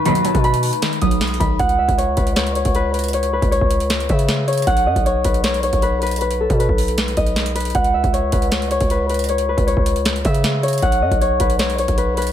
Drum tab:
HH |x-----x-----x-----x-----x-----x-----o-----x-----x-----x-----x-----x-----x---x---x---x-----------|x-----x-----------x-----x-----------x-----x-----x-----x-----x-----x-----x-----------x--x--x--x--|x-----x-----------x-----x-----------x-----x-----x-----x-----x-----x-----x-----------x--x--x--x--|x-----x-----------x-----x-----------x-----x-----x-----x-----x-----x-----x-----------x--x--x--x--|
SD |------------------------------------------------o-----------------------o-----------------------|------------------------------------------------o-----------------------------------------------|------------------------------------------------o-----------------------o-----------------------|------------------------------------------------o-----------------------------------------------|
BD |------------------o-----------------------------------------o-----------------------o-----------|o-----------------o-----------------o-----------------------------o-----------------------------|------------------o-----------o-----------------------------o-----------------------------------|o-----------------o-----------------o-----------------------------o-----------------------------|

HH |x-----x-----------x-----x-----------o-----x-----x-----x-----x-----x-----x-----x-----x--x--x--x--|x-----x-----------x-----x-----------x-----x-----x-----x-----x-----x-----x-----------x--x--x--x--|x-----x-----------x-----x-----------x-----x-----x-----x-----x-----x-----x-----------x--x--x--x--|x-----x-----------x-----x-----------x-----x-----x-----x-----x-----x-----x-----------x--x--x-----|
SD |------------------------------------------------o-----------------------o-----------------------|------------------------------------------------o-----------------------------------------------|------------------------------------------------o-----------------------o-----------------------|------------------------------------------------o-----------------------------------------------|
BD |------------------o-----------o-----------------------------o-----------------------------------|o-----------------o-----------------o-----------------------------o-----------------------------|------------------o-----------o-----------------------------o-----------------------------------|o-----------------o-----------------o-----------------------------o-----------------------------|